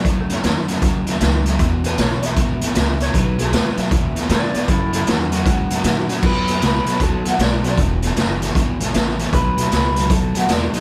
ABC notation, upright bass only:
X:1
M:4/4
L:1/8
Q:"Swing" 1/4=155
K:Bmix
V:1 name="Upright bass" clef=bass
F,,2 E,,2 D,,2 C,,2 | E,,2 B,,,2 G,,,2 C,,2 | B,,,2 D,, z E,,2 G,, z | F,,2 E,,2 G,,2 ^A,,2 |
F,,2 C,, z D,,2 B,,,2 | E,,,2 F,,,2 G,,,2 A,,,2 | B,,,2 C,,2 D,,2 E,, z |]